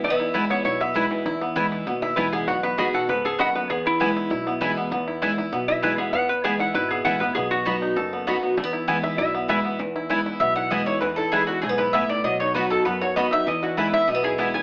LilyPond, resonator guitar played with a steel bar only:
\new Staff \with { instrumentName = "Resonator guitar played with a steel bar" } { \time 4/4 \key e \major \tempo 4 = 197 e''4. cis''8 cis''8 e''4.~ | e''8 r2 e''8 b'8 gis'8 | fis''8 b'8 gis'8 fis''8 b'8 gis'8 fis''8 b'8 | gis'8 e'2. r8 |
r2 r8 e''8 b'8 gis'8 | fis''8 b'8 gis'8 fis''8 b'8 gis'8 fis''8 b'8 | gis'8 fis'2. r8 | r4. e''8 e''4 e''4 |
r2 e''8 fis''8 dis''8 cis''8 | b'8 a'8 gis'8 fis'8 gis'8 b'8 e''8 d''8 | dis''8 cis''8 b'8 a'8 b'8 cis''8 dis''8 e''8 | dis''8 fis'8 b'8 e''8 dis''8 gis'8 r8 gis''8 | }